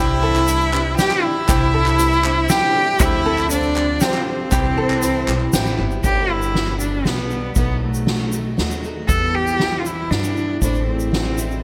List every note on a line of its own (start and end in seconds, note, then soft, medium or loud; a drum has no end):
0.00 0.95 C2 loud
0.00 1.45 C2 medium
0.00 0.48 C3 medium
0.00 1.45 C3 medium
0.00 0.46 E3 medium
0.00 0.16 G3 medium
0.00 0.48 G3 medium
0.00 0.16 C4 medium
0.00 0.16 D4 medium
0.00 0.49 D4 medium
0.00 0.16 E4 medium
0.00 0.49 E4 medium
0.00 0.97 E4 loud
0.00 0.23 G4 medium
0.00 0.16 C5 medium
0.00 0.98 E5 loud
0.11 clap soft
0.22 0.42 G3 medium
0.22 0.42 C4 medium
0.22 0.42 D4 medium
0.22 0.42 E4 medium
0.22 0.72 A4 medium
0.22 0.42 D5 medium
0.22 clap soft
0.35 clap medium
0.35 shaker soft
0.47 0.73 E3 medium
0.47 0.73 G3 medium
0.47 0.67 G3 medium
0.47 0.67 C4 medium
0.47 0.67 D4 medium
0.47 0.72 D4 medium
0.47 0.71 E4 medium
0.47 0.67 C5 medium
0.47 closed hi-hat medium
0.47 shaker medium
0.60 shaker soft
0.72 0.92 G3 medium
0.72 0.97 G3 soft
0.72 0.92 C4 medium
0.72 0.92 D4 medium
0.72 0.98 D4 soft
0.72 0.98 E4 medium
0.72 0.92 E4 medium
0.72 0.92 B4 medium
0.72 clap loud
0.97 1.23 E3 medium
0.97 1.24 G3 medium
0.97 1.17 G3 medium
0.97 1.17 C4 medium
0.97 1.17 D4 medium
0.97 1.23 D4 medium
0.97 1.17 E4 medium
0.97 1.21 E4 medium
0.97 1.25 G4 loud
0.97 1.47 G4 medium
0.97 1.17 C5 medium
0.97 1.25 G5 medium
0.97 snare medium
0.97 closed hi-hat medium
0.97 shaker medium
1.11 clap medium
1.22 1.43 G3 medium
1.22 1.48 G3 soft
1.22 1.43 C4 medium
1.22 1.43 D4 medium
1.22 1.48 D4 soft
1.22 1.48 E4 soft
1.22 2.51 E4 loud
1.22 1.43 E4 medium
1.22 1.43 D5 medium
1.22 2.52 E5 medium
1.48 2.96 C2 medium
1.48 2.46 C2 loud
1.48 1.99 C3 medium
1.48 2.96 C3 medium
1.48 1.97 E3 medium
1.48 1.99 G3 medium
1.48 1.68 G3 medium
1.48 1.68 C4 medium
1.48 1.68 D4 medium
1.48 2.00 D4 medium
1.48 1.68 E4 medium
1.48 2.00 E4 medium
1.48 1.73 G4 medium
1.48 1.68 C5 medium
1.48 kick loud
1.48 clap loud
1.48 closed hi-hat medium
1.48 shaker medium
1.61 clap soft
1.74 1.93 G3 medium
1.74 1.93 C4 medium
1.74 1.93 D4 medium
1.74 1.93 E4 medium
1.74 2.23 A4 medium
1.74 1.93 C5 medium
1.74 clap soft
1.86 clap medium
1.86 shaker soft
1.98 2.24 E3 medium
1.98 2.18 G3 medium
1.98 2.25 G3 medium
1.98 2.18 C4 medium
1.98 2.18 D4 medium
1.98 2.24 D4 medium
1.98 2.18 E4 medium
1.98 2.22 E4 medium
1.98 2.18 B4 medium
1.98 closed hi-hat medium
1.98 shaker medium
2.12 shaker soft
2.23 2.44 G3 medium
2.23 2.48 G3 soft
2.23 2.44 C4 medium
2.23 2.49 D4 medium
2.23 2.44 D4 medium
2.23 2.49 E4 medium
2.23 2.44 E4 medium
2.23 2.44 C5 medium
2.23 clap medium
2.48 2.74 E3 medium
2.48 2.75 G3 medium
2.48 2.69 G3 medium
2.48 2.74 D4 medium
2.48 2.69 E4 medium
2.48 2.72 E4 medium
2.48 2.99 G4 medium
2.48 3.03 G4 loud
2.48 2.69 D5 medium
2.48 3.02 G5 medium
2.48 snare medium
2.48 closed hi-hat medium
2.48 shaker loud
2.73 2.94 G3 medium
2.73 2.99 G3 soft
2.73 2.94 C4 medium
2.73 2.94 D4 medium
2.73 3.00 D4 soft
2.73 3.00 E4 medium
2.73 2.94 E4 medium
2.73 2.94 A4 medium
2.99 4.48 D2 medium
2.99 3.97 D2 loud
2.99 3.49 D3 medium
2.99 4.48 D3 medium
2.99 3.19 F3 medium
2.99 3.51 G3 medium
2.99 3.19 C4 medium
2.99 3.52 C4 medium
2.99 3.19 D4 medium
2.99 3.51 E4 loud
2.99 3.19 G4 medium
2.99 3.25 G4 medium
2.99 3.19 C5 medium
2.99 3.51 E5 medium
2.99 kick loud
2.99 clap medium
2.99 closed hi-hat medium
2.99 shaker loud
3.13 clap soft
3.25 3.44 F3 medium
3.25 3.44 C4 medium
3.25 3.44 D4 medium
3.25 3.75 A4 medium
3.25 clap soft
3.38 clap medium
3.38 shaker soft
3.50 4.00 D3 medium
3.50 3.69 F3 medium
3.50 4.02 G3 medium
3.50 3.69 C4 medium
3.50 4.02 C4 medium
3.50 3.69 D4 medium
3.50 4.04 D4 medium
3.50 4.03 F4 medium
3.50 3.69 G4 medium
3.50 3.69 C5 medium
3.50 4.03 D5 medium
3.50 closed hi-hat medium
3.50 shaker loud
3.63 shaker soft
3.75 3.94 F3 medium
3.75 3.94 C4 medium
3.75 3.94 D4 medium
3.75 3.94 G4 medium
3.75 3.95 C5 medium
3.75 clap medium
4.00 4.52 D3 medium
4.00 4.20 F3 medium
4.00 4.53 G3 medium
4.00 4.20 C4 medium
4.00 4.27 C4 medium
4.00 4.53 C4 medium
4.00 4.20 D4 medium
4.00 4.53 F4 medium
4.00 4.20 G4 medium
4.00 4.51 G4 medium
4.00 4.20 C5 medium
4.00 4.27 C5 medium
4.00 snare medium
4.00 closed hi-hat medium
4.00 shaker medium
4.14 clap medium
4.26 4.45 F3 medium
4.26 4.45 C4 medium
4.26 5.75 C4 medium
4.26 4.45 D4 medium
4.26 4.45 G4 medium
4.26 4.46 C5 medium
4.26 5.75 C5 medium
4.51 6.00 C2 medium
4.51 5.24 C2 loud
4.51 6.00 C3 medium
4.51 5.02 C3 medium
4.51 5.00 E3 medium
4.51 4.71 G3 medium
4.51 5.02 G3 medium
4.51 4.71 C4 medium
4.51 4.71 E4 medium
4.51 5.04 E4 medium
4.51 4.77 G4 loud
4.51 4.71 B4 medium
4.51 4.71 C5 medium
4.51 kick loud
4.51 clap medium
4.51 closed hi-hat medium
4.51 shaker medium
4.65 clap soft
4.77 4.96 G3 medium
4.77 4.96 C4 medium
4.77 4.96 E4 medium
4.77 5.27 A4 medium
4.77 4.96 B4 medium
4.77 4.96 C5 medium
4.90 clap medium
5.02 5.27 E3 medium
5.02 5.21 G3 medium
5.02 5.28 G3 medium
5.02 5.28 B3 medium
5.02 5.21 C4 medium
5.02 5.22 E4 medium
5.02 5.26 E4 medium
5.02 5.22 B4 medium
5.02 5.21 C5 medium
5.02 clap soft
5.02 closed hi-hat medium
5.02 shaker medium
5.28 5.51 B1 medium
5.28 5.47 G3 medium
5.28 5.53 G3 soft
5.28 5.54 B3 soft
5.28 5.47 C4 medium
5.28 5.53 E4 medium
5.28 5.47 E4 medium
5.28 5.47 B4 medium
5.28 5.47 C5 medium
5.28 clap medium
5.28 shaker soft
5.40 clap soft
5.53 5.76 A1 medium
5.53 5.78 E3 medium
5.53 5.72 G3 medium
5.53 5.79 G3 medium
5.53 5.78 B3 medium
5.53 5.72 C4 medium
5.53 5.72 E4 medium
5.53 5.76 E4 medium
5.53 6.03 G4 medium
5.53 5.72 B4 medium
5.53 5.72 C5 medium
5.53 snare medium
5.53 closed hi-hat medium
5.53 shaker loud
5.66 shaker soft
5.78 6.01 G1 medium
5.78 5.97 G3 medium
5.78 6.03 G3 soft
5.78 6.04 B3 medium
5.78 5.97 C4 medium
5.78 6.03 E4 medium
5.78 5.97 E4 medium
5.78 5.97 B4 medium
5.78 5.97 C5 medium
5.78 clap soft
5.91 shaker soft
6.03 7.02 G1 medium
6.03 6.54 G2 medium
6.03 6.55 D3 medium
6.03 6.53 G3 medium
6.03 6.55 B3 medium
6.03 6.55 D4 medium
6.03 6.32 G4 medium
6.03 6.56 G4 medium
6.03 kick medium
6.03 crash medium
6.03 shaker medium
6.30 6.80 E4 loud
6.30 ride medium
6.42 shaker medium
6.54 6.80 G3 medium
6.54 6.80 B3 medium
6.54 6.80 D4 medium
6.54 6.78 G4 medium
6.54 snare medium
6.54 ride medium
6.79 7.04 G3 soft
6.79 7.05 B3 soft
6.79 7.08 D4 medium
6.79 7.06 D4 soft
6.79 7.05 G4 soft
6.79 shaker medium
7.05 7.52 B1 medium
7.05 7.30 G3 medium
7.05 7.31 B3 medium
7.05 7.56 B3 medium
7.05 7.31 D4 medium
7.05 7.29 G4 medium
7.05 snare medium
7.05 ride soft
7.05 shaker soft
7.30 7.56 G3 soft
7.30 7.57 B3 soft
7.30 7.57 D4 soft
7.30 7.56 G4 soft
7.30 shaker soft
7.55 8.54 B1 medium
7.55 8.07 B2 medium
7.55 8.05 F#3 medium
7.55 8.07 A3 medium
7.55 7.80 B3 medium
7.55 8.08 D#4 medium
7.55 8.08 F#4 medium
7.55 kick medium
7.55 ride medium
7.55 shaker medium
7.81 8.80 A3 medium
7.81 ride medium
7.94 shaker medium
8.07 8.32 F#3 medium
8.07 8.33 A3 medium
8.07 8.33 D#4 medium
8.07 8.31 F#4 medium
8.07 snare medium
8.07 ride medium
8.32 8.57 A3 soft
8.32 8.58 D#4 soft
8.32 8.58 F#4 soft
8.32 shaker medium
8.57 9.05 D#2 medium
8.57 8.83 F#3 medium
8.57 8.84 A3 medium
8.57 8.83 D#4 medium
8.57 8.81 F#4 medium
8.57 snare medium
8.57 ride medium
8.57 shaker soft
8.71 shaker medium
8.82 9.09 A3 soft
8.82 9.09 D#4 soft
8.82 9.08 F#4 medium
8.82 shaker soft
9.07 9.59 E2 medium
9.07 10.07 E2 medium
9.07 9.59 B2 medium
9.07 9.58 E3 medium
9.07 9.59 G3 medium
9.07 9.60 B3 medium
9.07 9.62 E4 medium
9.07 9.36 A4 loud
9.07 kick loud
9.07 ride medium
9.07 shaker medium
9.34 9.81 G4 loud
9.34 ride medium
9.47 shaker medium
9.59 9.85 E3 medium
9.59 9.86 G3 medium
9.59 9.85 B3 medium
9.59 9.83 E4 medium
9.59 snare medium
9.59 ride medium
9.79 9.88 F4 medium
9.85 10.09 E3 soft
9.85 10.10 G3 soft
9.85 10.11 B3 soft
9.85 10.10 E4 soft
9.85 10.12 E4 medium
9.85 shaker medium
10.10 10.58 G2 medium
10.10 10.36 E3 medium
10.10 10.36 G3 medium
10.10 10.36 B3 medium
10.10 10.62 D4 medium
10.10 10.34 E4 medium
10.10 snare medium
10.10 ride medium
10.10 shaker soft
10.24 shaker medium
10.36 10.60 E3 soft
10.36 10.62 G3 soft
10.36 10.62 B3 soft
10.36 10.61 E4 soft
10.36 shaker soft
10.61 11.60 A1 medium
10.61 11.12 A2 medium
10.61 11.10 E3 medium
10.61 11.12 A3 medium
10.61 11.13 C4 medium
10.61 10.86 D4 medium
10.61 11.14 E4 medium
10.61 kick medium
10.61 shaker medium
10.74 shaker soft
10.87 11.63 C4 medium
10.87 ride soft
10.99 shaker medium
11.12 11.38 E3 medium
11.12 11.38 A3 medium
11.12 11.38 C4 medium
11.12 11.36 E4 medium
11.12 snare medium
11.12 ride medium
11.37 11.62 A3 soft
11.37 11.63 C4 soft
11.37 11.63 E4 soft
11.37 shaker medium
11.51 shaker soft